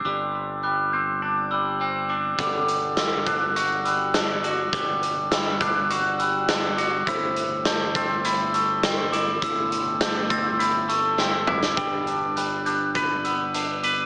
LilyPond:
<<
  \new Staff \with { instrumentName = "Glockenspiel" } { \time 4/4 \key g \major \tempo 4 = 102 d'''4 fis'''8 g'''4 e'''4 d'''8 | d'''4 e'''8 fis'''4 e'''4 d'''8 | d'''4 e'''8 fis'''4 e'''4 d'''8 | e'''4 g'''8 a'''4 e'''4 d'''8 |
e'''4 g'''8 a'''4 e'''4 d'''8 | d'''4 fis'''8 g'''4 e'''4 d'''8 | }
  \new Staff \with { instrumentName = "Pedal steel guitar" } { \time 4/4 \key g \major << { <d'' e''>1 | <fis'' d'''>1~ | <fis'' d'''>1 | <c'' e'' b''>1~ |
<c'' e'' b''>1 | <g' b' g''>1 | } \\ { r1 | a'1~ | a'1~ | a'1~ |
a'1 | d'1 | } >> }
  \new Staff \with { instrumentName = "Clean electric guitar" } { \time 4/4 \key g \major <g c' d'>4 g8 c'8 d'8 g8 c'8 d'8 | g4 g8 d'8 fis'8 g8 d'8 fis'8 | g4 g8 d'8 fis'8 g8 d'8 fis'8 | a,4 a8 c'8 e'8 a8 c'8 e'8 |
a,4 a8 c'8 e'8 a8 c'8 e'8 | g8 d'8 g8 d'8 b'8 b8 d'8 b'8 | }
  \new Staff \with { instrumentName = "Fingered electric bass" } { \clef bass \time 4/4 \key g \major g,,1 | g,,1 | g,,1 | g,,1 |
g,,1 | g,,1 | }
  \new DrumStaff \with { instrumentName = "Drums" } \drummode { \time 4/4 r4 r4 r4 r4 | <hh bd>8 hh8 <hh sn>8 <hh bd>8 hh8 hh8 <hh sn>8 hh8 | <hh bd>8 hh8 <hh sn>8 <hh bd>8 hh8 hh8 <hh sn>8 hh8 | <hh bd>8 hh8 <hh sn>8 <hh bd>8 hh8 hh8 <hh sn>8 hh8 |
<hh bd>8 hh8 <hh sn>8 <hh bd>8 hh8 hh8 sn8 toml16 sn16 | <hh bd>8 hh8 hh8 hh8 <hh bd>8 hh8 hh8 hh8 | }
>>